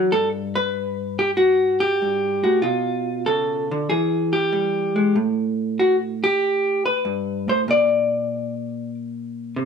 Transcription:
0.00 0.12 F#3 medium
0.12 2.01 G2 medium
0.12 0.28 A4 loud
0.55 1.18 B4 loud
1.19 1.30 G4 medium
1.37 2.42 F#4 medium
1.80 2.63 G4 medium
2.02 2.44 G2 medium
2.44 2.63 A2 medium
2.44 2.62 F#4 medium
2.62 3.87 B2 medium
2.62 3.88 F4 medium
3.26 3.70 C#3 medium
3.26 3.89 A4 medium
3.71 3.90 D3 medium
3.90 5.13 E3 medium
3.90 4.32 G#4 medium
4.33 5.15 G4 medium
4.52 4.95 G3 medium
4.96 5.15 G#3 medium
5.16 7.04 A2 medium
5.79 5.96 F#4 medium
6.24 6.85 G4 medium
6.86 7.48 B4 medium
7.05 7.47 G2 medium
7.48 7.67 A2 medium
7.48 7.60 C5 medium
7.68 9.65 A#2 medium
7.68 8.94 D5 loud
9.56 9.65 C3 medium

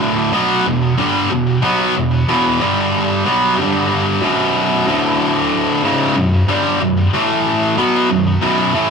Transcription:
0.00 0.33 D2 medium
0.00 0.32 A2 loud
0.00 0.33 D3 loud
0.33 0.65 B2 medium
0.33 0.65 F#3 loud
0.33 0.65 B3 loud
0.66 0.92 E2 medium
0.66 0.92 B2 medium
0.98 1.30 G2 medium
0.98 1.30 D3 medium
0.98 1.30 G3 medium
1.30 1.57 E2 medium
1.30 1.57 B2 medium
1.62 1.94 B2 loud
1.62 1.95 F#3 medium
1.62 1.95 B3 loud
1.96 2.22 E2 medium
1.96 2.22 B2 medium
2.28 2.60 E2 medium
2.28 2.60 B2 loud
2.28 2.60 E3 loud
2.61 3.24 G2 loud
2.61 3.25 D3 medium
2.61 3.25 G3 loud
3.25 3.58 B2 medium
3.25 3.58 F#3 loud
3.25 3.57 B3 loud
3.57 4.21 G2 medium
3.57 4.22 D3 medium
3.57 4.22 G3 medium
4.22 4.86 B1 medium
4.22 4.86 F#2 medium
4.22 4.86 B2 medium
4.87 5.83 D2 medium
4.87 5.83 A2 medium
4.87 5.83 D3 medium
5.84 6.15 C#2 medium
5.84 6.15 G#2 medium
5.84 6.16 C#3 loud
6.16 6.42 B1 medium
6.16 6.42 F#2 medium
6.49 6.80 G2 medium
6.49 6.80 D3 medium
6.49 6.80 G3 loud
6.81 7.07 B1 medium
6.81 7.07 F#2 medium
7.13 7.77 A2 medium
7.13 7.77 E3 medium
7.13 7.77 A3 medium
7.77 8.09 B2 medium
7.77 8.09 F#3 medium
7.77 8.09 B3 loud
8.10 8.36 B1 medium
8.10 8.36 F#2 medium
8.41 8.73 B1 medium
8.41 8.73 F#2 medium
8.41 8.73 B2 medium
8.74 8.90 A2 medium
8.74 8.90 E3 loud
8.74 8.90 A3 medium

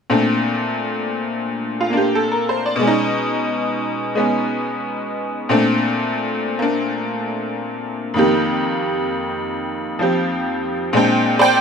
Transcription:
0.10 2.82 A#2 soft
0.10 2.83 A3 soft
0.10 2.82 C4 soft
0.10 1.91 D4 soft
1.81 2.02 F4 soft
1.90 2.81 A#3 soft
1.90 2.82 D4 soft
1.97 2.21 G4 soft
2.15 2.46 A4 soft
2.32 2.60 A#4 soft
2.49 2.69 C5 soft
2.66 2.89 D5 soft
2.76 5.47 B2 soft
2.76 4.14 G#3 soft
2.83 4.17 C#4 soft
2.87 5.52 D#4 soft
4.15 5.49 G#3 soft
4.15 5.50 B3 soft
4.15 5.51 C#4 soft
5.49 8.18 A#2 soft
5.49 8.18 A3 soft
5.49 8.18 C4 soft
5.49 6.61 D4 soft
6.59 8.16 A#3 soft
6.59 8.19 D4 soft
8.14 10.92 F2 soft
8.14 10.93 D#3 soft
8.14 10.94 A#3 soft
8.18 10.01 G4 soft
9.99 10.93 F3 soft
9.99 10.93 C4 soft
9.99 10.95 G4 soft
10.93 11.61 A#2 soft
10.93 11.61 G#3 soft
10.93 11.61 C4 soft
10.93 11.61 D4 soft
10.97 11.40 G5 soft
11.39 11.61 C5 medium
11.39 11.61 D5 medium
11.39 11.61 G5 medium

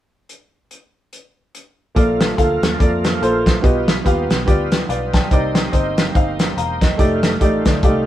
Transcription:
0.29 closed hi-hat soft
0.71 closed hi-hat soft
1.13 closed hi-hat medium
1.55 closed hi-hat medium
1.95 2.32 A#1 medium
1.95 2.58 A#2 medium
1.95 3.62 D3 medium
1.95 3.62 F3 medium
1.95 3.62 A3 soft
1.95 2.27 A#3 medium
1.95 3.62 A#3 medium
1.95 2.27 F4 medium
1.95 5.28 F4 medium
1.95 2.28 A4 medium
1.95 2.28 D5 medium
1.95 kick loud
1.95 closed hi-hat medium
2.21 snare loud
2.21 closed hi-hat medium
2.36 2.59 D2 medium
2.36 2.69 A#3 medium
2.36 2.69 F4 medium
2.36 2.69 A4 medium
2.36 2.70 F5 medium
2.36 kick medium
2.36 closed hi-hat medium
2.62 2.77 D#2 medium
2.62 snare loud
2.62 closed hi-hat medium
2.79 3.16 F2 medium
2.79 3.11 A#3 medium
2.79 3.11 F4 medium
2.79 3.11 A4 medium
2.79 3.12 D5 medium
2.79 kick loud
2.79 closed hi-hat medium
3.04 snare loud
3.04 closed hi-hat medium
3.21 3.57 A#1 medium
3.21 3.53 A#3 medium
3.21 3.53 F4 medium
3.21 3.53 A4 medium
3.21 3.54 C5 medium
3.21 closed hi-hat medium
3.46 kick medium
3.46 snare loud
3.46 closed hi-hat medium
3.62 4.00 B1 medium
3.62 4.26 B2 medium
3.62 5.30 G3 medium
3.62 3.94 B3 medium
3.62 5.30 B3 soft
3.62 6.96 D#4 medium
3.62 3.95 F4 medium
3.62 3.95 G4 medium
3.62 3.95 D#5 medium
3.62 kick loud
3.62 closed hi-hat medium
3.88 snare loud
3.88 closed hi-hat medium
4.05 4.26 D#2 medium
4.05 4.37 B3 medium
4.05 4.37 F4 medium
4.05 4.37 G4 medium
4.05 4.38 F5 medium
4.05 kick medium
4.05 closed hi-hat medium
4.30 4.48 B1 medium
4.30 snare loud
4.30 closed hi-hat medium
4.46 4.83 D2 medium
4.46 4.78 B3 medium
4.46 4.79 F4 medium
4.46 4.79 G4 medium
4.46 4.79 D5 medium
4.46 kick loud
4.46 closed hi-hat medium
4.72 snare loud
4.72 closed hi-hat medium
4.89 5.25 B1 medium
4.89 5.13 B4 medium
4.89 5.12 D5 medium
4.89 5.12 F5 medium
4.89 closed hi-hat medium
5.14 5.31 D5 soft
5.14 5.54 G5 medium
5.14 5.30 A5 medium
5.14 kick medium
5.14 snare loud
5.14 closed hi-hat medium
5.31 5.67 C2 medium
5.31 5.94 C3 medium
5.31 6.98 A#3 medium
5.31 5.62 C4 medium
5.31 6.98 C4 soft
5.31 5.63 D#4 medium
5.31 8.06 G4 medium
5.31 5.63 A#4 medium
5.31 5.63 D5 medium
5.31 kick loud
5.31 closed hi-hat medium
5.55 snare loud
5.55 closed hi-hat medium
5.72 6.09 G1 medium
5.72 6.04 C4 medium
5.72 6.04 D#4 medium
5.72 6.05 A#4 medium
5.72 6.05 D#5 medium
5.72 kick medium
5.72 closed hi-hat medium
5.98 snare loud
5.98 closed hi-hat medium
6.14 6.51 G1 medium
6.14 6.46 C4 medium
6.14 6.47 D#4 medium
6.14 6.47 A#4 medium
6.14 6.47 F5 medium
6.14 kick loud
6.14 closed hi-hat medium
6.39 snare loud
6.39 closed hi-hat medium
6.57 6.93 E1 medium
6.57 6.81 F5 medium
6.57 6.80 A#5 medium
6.57 closed hi-hat medium
6.81 7.22 A#4 medium
6.81 7.22 D#5 medium
6.81 kick medium
6.81 snare medium
6.81 closed hi-hat medium
6.97 7.35 F1 medium
6.97 8.06 D#3 medium
6.97 7.30 A3 medium
6.97 8.06 A3 medium
6.97 7.30 D#4 medium
6.97 8.06 F4 medium
6.97 7.30 G4 medium
6.97 7.31 D5 medium
6.97 kick loud
6.97 closed hi-hat medium
7.23 snare loud
7.23 closed hi-hat medium
7.40 7.62 A1 medium
7.40 7.72 A3 medium
7.40 7.72 D#4 medium
7.40 7.73 G4 medium
7.40 7.64 D5 medium
7.40 kick medium
7.40 closed hi-hat medium
7.65 7.81 D2 medium
7.65 7.82 D5 medium
7.65 kick medium
7.65 snare loud
7.65 closed hi-hat medium
7.83 8.06 C2 medium
7.83 8.06 A3 medium
7.83 8.06 D#4 medium
7.83 8.06 G4 medium
7.83 8.06 D5 medium
7.83 8.06 F5 medium
7.83 kick loud
7.83 closed hi-hat medium

